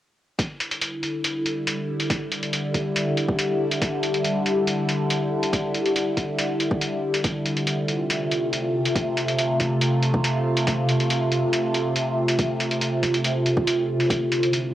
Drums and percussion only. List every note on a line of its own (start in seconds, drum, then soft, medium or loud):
0.39 kick loud
0.39 closed hi-hat medium
0.60 closed hi-hat medium
0.71 closed hi-hat soft
0.81 closed hi-hat medium
1.03 closed hi-hat medium
1.24 closed hi-hat medium
1.46 closed hi-hat soft
1.67 closed hi-hat medium
2.00 closed hi-hat medium
2.10 kick loud
2.10 closed hi-hat medium
2.32 closed hi-hat soft
2.43 closed hi-hat soft
2.53 closed hi-hat medium
2.74 kick medium
2.74 closed hi-hat soft
2.96 closed hi-hat medium
3.17 closed hi-hat soft
3.29 kick loud
3.39 closed hi-hat medium
3.71 closed hi-hat medium
3.82 kick loud
3.82 closed hi-hat medium
4.03 closed hi-hat soft
4.14 closed hi-hat soft
4.25 closed hi-hat medium
4.46 closed hi-hat soft
4.67 closed hi-hat medium
4.89 closed hi-hat soft
5.10 closed hi-hat medium
5.43 closed hi-hat medium
5.53 kick loud
5.53 closed hi-hat medium
5.74 closed hi-hat soft
5.86 closed hi-hat soft
5.96 closed hi-hat medium
6.17 kick medium
6.17 closed hi-hat soft
6.39 closed hi-hat medium
6.60 closed hi-hat soft
6.71 kick loud
6.81 closed hi-hat medium
7.14 closed hi-hat medium
7.24 kick loud
7.24 closed hi-hat medium
7.46 closed hi-hat soft
7.57 closed hi-hat soft
7.67 closed hi-hat medium
7.88 closed hi-hat soft
8.10 closed hi-hat medium
8.31 closed hi-hat soft
8.53 closed hi-hat medium
8.86 closed hi-hat medium
8.96 kick loud
8.96 closed hi-hat medium
9.17 closed hi-hat soft
9.28 closed hi-hat soft
9.39 closed hi-hat medium
9.60 kick medium
9.60 closed hi-hat soft
9.81 closed hi-hat medium
10.03 closed hi-hat medium
10.14 kick medium
10.24 closed hi-hat medium
10.57 closed hi-hat medium
10.67 kick loud
10.67 closed hi-hat medium
10.89 closed hi-hat medium
11.00 closed hi-hat soft
11.10 closed hi-hat medium
11.32 closed hi-hat medium
11.53 closed hi-hat medium
11.74 closed hi-hat medium
11.96 closed hi-hat medium
12.28 closed hi-hat medium
12.39 kick loud
12.39 closed hi-hat medium
12.60 closed hi-hat soft
12.71 closed hi-hat soft
12.81 closed hi-hat medium
13.03 kick medium
13.03 closed hi-hat medium
13.14 closed hi-hat soft
13.24 closed hi-hat medium
13.46 closed hi-hat medium
13.57 kick medium
13.67 closed hi-hat medium
14.00 closed hi-hat medium
14.10 kick loud
14.10 closed hi-hat medium
14.32 closed hi-hat soft
14.43 closed hi-hat soft
14.53 closed hi-hat medium